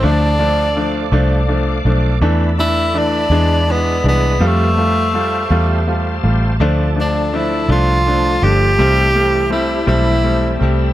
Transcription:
Already playing: A4
0.02 D2 F3 A3 D4 D5 F5 D6
0.39 F3 A3 D4
0.76 F3 A3 D4
1.12 C2 F3 A3 D4
1.48 F3 A3 D4
1.85 B1 F3 A3 D4
2.21 E2 E3 A3 D4 D5 E5 B5
2.58 E3 A3 D4 E4
2.94 E3 A3 D4
2.98 D4
3.30 E2 E3 G#3 D4 G#4 E5
3.67 E3 G#3 B3 D4
4.04 C2 E3 G#3 D4
4.08 B3
4.39 F2 G3 A3 F4 G4 C5 F5 A5
4.47 A3
4.77 G3 A3 F4
5.14 G3 A3 F4
5.50 E2 G3 A3 F4
5.87 G3 A3 F4
6.23 A1 G3 A3 F4
6.59 D2 D3 F3 A3 D4 F4 A4 D5
6.95 F3 A3 D4
7.01 D4
7.33 D3 F3 A3 D4 E4
7.69 C2 D3 F3 A3 D4 F4
8.06 F3 A3 D4
8.42 G1 F3 A3 D4 F4 G4
8.78 C2 C3 E3 G3 A3 C4 E4 G4 C5 E5
9.15 G3 A3 C4
9.50 G3 A3 C4 E4
9.54 E4 G4
9.87 B1 E3 G3 A3 C4 E4 G4
10.23 G3 A3 C4
10.59 C2 G3 A3 C4 E4 G4
10.63 G3 A3

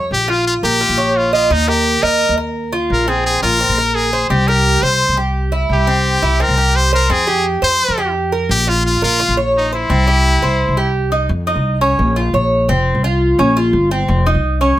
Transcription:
0.11 A#1 G4
0.28 F4
0.47 F4
0.63 A#1 G4 A#4
0.81 F4
0.89 A#1
0.98 C#5
1.17 F4
1.33 F4 D#5
1.50 D#2 D#4
1.68 G4 A#4
2.02 D#2 A#4 D#5
2.29 D#2
2.38 A#4
2.72 F4
2.90 A#1 A#4
3.08 C4 G#4
3.26 G#4
3.42 A#1 F4 A#4
3.60 C4
3.69 A#1
3.78 A#4
3.95 G#4
4.13 C5
4.30 C2 C4 G4
4.48 G4 A#4
4.82 C2 C5
5.08 C2
5.17 G4
5.52 E4
5.69 C2 G4
5.87 C4
6.22 C2 E4
6.40 C4 A#4
6.48 C2
6.57 G4
6.76 C5
6.93 A#4 C5
7.10 F2 C4 G#4
7.27 G4
7.62 F2 C5
7.88 F2
7.98 G4
8.32 A#4
8.49 A#1 G4
8.67 F4
8.86 F4
9.02 A#1 F4 A#4
9.20 F4
9.28 A#1
9.37 C#5
9.58 D#4
9.72 E4 C5
9.89 C2 C4
10.07 G4
10.42 C2 C5
10.68 C2
10.77 G4
11.12 D#4
11.29 F2
11.47 D#4
11.55 C2
11.81 C#4
11.99 A#1
12.16 F4
12.33 A#1 C#5
12.68 F1 C4
12.95 C2
13.04 F4
13.39 A#1 C#4
13.57 F4
13.73 G1
13.91 C4
14.08 F1
14.26 D#4
14.34 C2
14.61 C#4

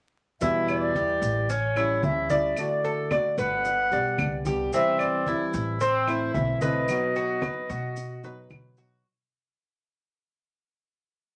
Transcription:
0.41 E2 B2 E3 G3 B3 E4 E5, high conga, maracas
0.68 D5, high conga, claves, maracas
0.95 E3 G3 B3 E4 G4, high conga, maracas
1.21 A1, maracas
1.49 C#4 C#5, muted nylon-string guitar stroke, high conga, maracas
1.76 G3 C#4 E4, high conga, claves, maracas
2.03 D2 E3 G3 C#4 E5, high conga, maracas
2.07 E4
2.30 C#4 E4 D5 E5, high conga, maracas
2.34 G3
2.57 D3 A3 D4 F#4 D5, high conga, claves, maracas
2.84 A4, high conga, maracas
3.11 D3 A3 D4 D5, high conga, claves, maracas
3.15 F#4
3.38 G1 B4 F#5, high conga, maracas
3.65 muted nylon-string guitar stroke, high conga, maracas
3.92 B1 G3 B3 D4 G4 D5, high conga, maracas
4.18 C2 G3 B3 D4 G4, high conga, claves, maracas
4.45 G3 B3 D4 G4, high conga, maracas
4.72 C3 E3 G3 C4 E4 E5, high conga, maracas
4.99 D5, high conga, claves, maracas
5.26 E3 G3 C4 E4, high conga, maracas
5.54 A1, maracas
5.80 C4 C5, muted nylon-string guitar stroke, high conga, maracas
6.08 A3 C4 E4, high conga, claves, maracas
6.33 B1 E3 A3 C4 E5, high conga, maracas
6.38 E4
6.61 A3 C4 E4 B4 D#5, high conga, maracas
6.88 B2 F#3 B3 D#4 F#4, high conga, claves, maracas
7.15 F#4, high conga, maracas
7.42 F#3 B3 D#4 F#4 B4, high conga, claves, maracas
7.69 B2 F#4, high conga, maracas
7.96 muted nylon-string guitar stroke, high conga, maracas
8.24 F#3 B3 D#4 F#4 B4, high conga, maracas
8.50 B2 F#3 B3 D#4 F#4, high conga, claves, maracas
8.77 F#3 B3 D#4 F#4, maracas

